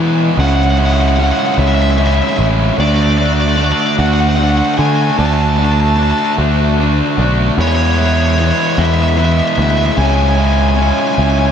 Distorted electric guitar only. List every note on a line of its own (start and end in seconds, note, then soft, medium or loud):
0.00 0.35 E3 medium
0.00 0.37 G#3 medium
0.00 0.39 B3 medium
0.00 0.36 E4 medium
0.38 1.16 C#3 loud
0.38 0.79 G#3 loud
0.38 0.78 C#4 loud
0.38 0.76 E4 loud
0.78 1.17 G#3 medium
0.78 1.18 C#4 medium
0.78 1.19 E4 medium
1.18 1.96 C#3 medium
1.18 1.59 G#3 medium
1.18 1.58 C#4 medium
1.18 1.56 E4 medium
1.57 1.98 G#3 medium
1.57 1.98 C#4 medium
1.57 1.99 E4 medium
1.98 2.76 C#3 medium
1.98 2.38 G#3 medium
1.98 2.37 C#4 medium
1.98 2.36 E4 medium
2.37 2.76 G#3 medium
2.37 2.76 C#4 medium
2.37 2.75 E4 medium
2.77 3.57 D3 medium
2.77 3.19 A3 loud
2.77 3.18 D4 loud
2.77 3.17 F#4 loud
3.17 3.57 A3 medium
3.17 3.58 D4 medium
3.17 3.59 F#4 medium
3.57 4.36 D3 medium
3.57 3.99 A3 medium
3.57 3.98 D4 medium
3.57 3.96 F#4 medium
3.98 4.37 A3 medium
3.98 4.38 D4 medium
3.98 4.39 F#4 medium
4.37 5.16 D3 medium
4.37 4.79 A3 medium
4.37 4.78 D4 medium
4.37 4.76 F#4 medium
4.78 5.17 A3 medium
4.78 5.18 D4 medium
4.78 5.19 F#4 medium
5.17 5.96 D3 loud
5.17 5.58 A3 loud
5.17 5.57 D4 loud
5.17 5.56 F#4 loud
5.57 5.97 A3 medium
5.57 5.98 D4 medium
5.57 5.98 F#4 medium
5.97 6.77 D3 medium
5.97 6.39 A3 medium
5.97 6.38 D4 medium
5.97 6.36 F#4 medium
6.38 6.78 A3 medium
6.38 6.78 D4 medium
6.38 6.79 F#4 medium
6.78 7.56 D3 medium
6.78 7.18 A3 medium
6.78 7.17 D4 medium
6.78 7.16 F#4 medium
7.17 7.56 A3 medium
7.17 7.56 D4 medium
7.17 7.55 F#4 medium
7.58 8.37 E3 loud
7.58 8.00 G#3 loud
7.58 7.99 B3 loud
7.58 7.98 E4 loud
7.98 8.38 G#3 medium
7.98 8.39 B3 medium
7.98 8.40 E4 medium
8.38 9.15 E3 medium
8.38 8.78 G#3 medium
8.38 8.78 B3 medium
8.38 8.76 E4 medium
8.77 9.16 G#3 medium
8.77 9.18 B3 medium
8.77 9.18 E4 medium
9.17 9.95 E3 medium
9.17 9.58 G#3 medium
9.17 9.58 B3 medium
9.17 9.56 E4 medium
9.57 9.96 G#3 medium
9.57 9.98 B3 medium
9.57 9.95 E4 medium
9.96 10.76 C#3 loud
9.96 10.38 G#3 medium
9.96 10.37 C#4 loud
9.96 10.35 E4 loud
10.37 10.77 G#3 medium
10.37 10.77 C#4 medium
10.37 10.78 E4 medium
10.77 11.52 C#3 medium
10.77 11.18 G#3 medium
10.77 11.16 C#4 medium
10.77 11.15 E4 medium
11.16 11.52 G#3 medium
11.16 11.52 C#4 medium
11.16 11.52 E4 medium